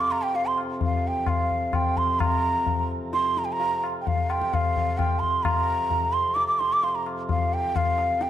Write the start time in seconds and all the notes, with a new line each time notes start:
Already playing: F2 C3
0.00 D6
0.11 A#5, tabla na
0.22 G5
0.34 F5, tabla tin
0.46 C6
0.58 tabla na
0.81 F5, tabla tin, tabla ge
1.08 G5
1.26 F5, tabla na, tabla ge
1.50 tabla ge
1.73 G5, tabla na, tabla ge
1.97 C6, tabla ge
2.20 A#5, tabla na, tabla ge
2.66 tabla tin, tabla ge
3.13 C6, tabla te
3.37 A#5, tabla te
3.45 G5
3.52 A#5
3.60 tabla tin
3.84 tabla na
4.01 G5
4.07 F5, tabla tin, tabla ge
4.30 G5, tabla na
4.42 tabla ke
4.54 F5, tabla na, tabla ge
4.77 tabla ge
4.98 G5, tabla na, tabla ge
5.20 C6, tabla ge
5.43 A#5, tabla na, tabla ge
5.90 tabla tin, tabla ge
6.13 C6
6.35 D6, tabla te
6.48 D6
6.59 C6, tabla te
6.73 D6
6.83 C6, tabla tin
6.95 A#5
7.06 tabla na
7.29 F5, tabla tin, tabla ge
7.54 G5
7.76 F5, tabla na, tabla ge
7.98 tabla te
8.21 G5, tabla te